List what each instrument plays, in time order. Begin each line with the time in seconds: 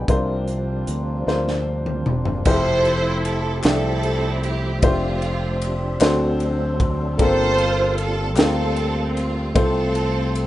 Already playing: tonewheel organ G3 D4, harmonium F4, upright piano B4 G5 G#5
0.08 fingered electric bass C2, upright piano C3 D4 F4 A#4 C5, tonewheel organ F3 A#3 C4, harmonium A#3 C4 D4, kick, closed hi-hat
0.48 closed hi-hat
0.87 fingered electric bass D2, closed hi-hat
1.26 fingered electric bass D2, upright piano D4 F4 A#4 C5, snare
1.48 snare
1.86 mid tom
2.06 fingered electric bass E1, mid tom
2.25 floor tom
2.45 fingered electric bass F1, upright piano F3 E4 G4 G#4 C5, tonewheel organ F3 A3 C4 G4 E5, string section E4 A4 C5, kick, crash
2.53 upright piano A4
2.85 ride
3.25 string section A4, ride
3.63 fingered electric bass C2, upright piano F3 E4 G4 A4 D5, string section C4 E4 A4, snare, clap, ride
4.03 ride
4.43 string section G4, ride
4.82 fingered electric bass F1, string section A3 C4 F4, upright piano D4 F4 G4 C5 E5, kick, ride
4.86 tonewheel organ F3 D4
5.22 ride
5.62 ride
6.00 fingered electric bass D2, upright piano D3 C4 D4 F#4 A4 C5, tonewheel organ F#3 A3 A4, snare, clap, ride
6.40 ride
6.80 kick, ride
7.18 fingered electric bass G1, upright piano G2 A#3 C4 F4 G4 A4, tonewheel organ G3 A#3 F4, string section F4 A4 C5, kick, ride
7.58 ride
7.98 string section A4, ride
8.36 fingered electric bass D2, upright piano A#3 C4 F4 G4 A4, string section C4 F4 A4, snare, clap, ride
8.76 ride
9.16 string section F4, ride
9.54 fingered electric bass C2, upright piano C3 A3 C4 F4 A4 C5, tonewheel organ A3 F4, string section C4 F4 A4, kick, ride
9.95 ride
10.35 ride